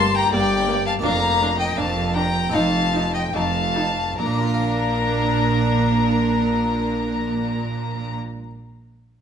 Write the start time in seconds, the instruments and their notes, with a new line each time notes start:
Already playing: double bass section G1, harpsichord G2 A#3 D4 D5, cello section G2, violin A5, violin section C6
0.15 violin G5, violin section A#5
0.32 double bass section G1, cello section G2, harpsichord G2, viola section A#3, violin D5, violin section G5
0.68 viola section A#3
0.86 violin F5, violin section A5
0.99 harpsichord A#3 D4 D5
1.03 double bass section F1, harpsichord F2, cello section F2, viola section D4, violin F5, violin section A#5
1.40 viola section D4
1.58 violin D#5, violin section G5
1.77 double bass section F1, cello section F2, harpsichord F2, viola section D4, violin F5, violin section A5
2.14 viola section D4, violin G5, violin section A#5
2.49 harpsichord C4 D#4 C5, violin F5
2.54 double bass section F1, cello section F2, harpsichord F2, viola section D#4, violin section A5
2.93 viola section D#4
3.14 violin D#5, violin section G5
3.34 double bass section F1, harpsichord F2, cello section F2, viola section D#4, violin F5, violin section A5
3.76 viola section D#4
4.19 double bass section A#1, harpsichord A#2, cello section A#2, viola section D4, violin section A#4 A#5, violin A#4
4.26 harpsichord A#3
4.33 harpsichord D4
4.40 harpsichord F4
4.47 harpsichord A#4
4.54 harpsichord F5